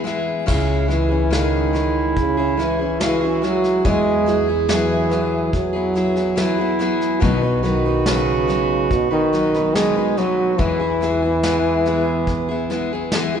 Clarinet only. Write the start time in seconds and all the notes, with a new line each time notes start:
0.49 E4
3.00 F#4
3.85 G#4
6.39 E4
7.23 F#4
9.75 G#4
10.17 F#4
10.59 E4
11.45 B3